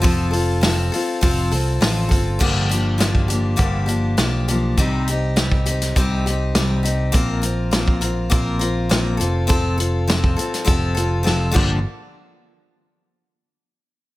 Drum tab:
CC |----------------|x---------------|----------------|----------------|
HH |o-o-o-o-o-o-o-o-|--x-x-x-x-x-x-x-|x-x-x-xxx-x-x-x-|x-x-x-x-x-x-x-x-|
SD |----o-------o---|----o-------o---|----o--o----o---|----o-------o---|
BD |o-------o-----o-|o----o--o-------|o----o--o-------|o----o--o-------|

CC |--------------x-|----------------|
HH |x-x-x-xxx-x-----|----------------|
SD |----o--o----o---|----------------|
BD |o----o--o-----o-|----------------|